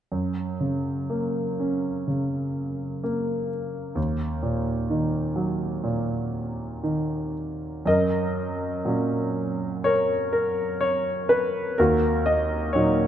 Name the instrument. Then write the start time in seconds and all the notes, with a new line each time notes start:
grand piano
0.12 F#2
0.60 C#3
1.10 A#3
1.60 C#4
2.08 C#3
3.04 A#3
3.95 D#2
4.43 A#2
4.90 D#3
5.36 F#3
5.83 A#2
6.83 D#3
7.86 F#2 A#4 D#5
8.85 A#2 F#3 C#4
9.84 A#4 C#5
10.33 A#4
10.81 C#5
11.29 B4
11.78 D#2 F#4 A#4
12.26 D#5
12.73 A#2 F#3 D#4 C#5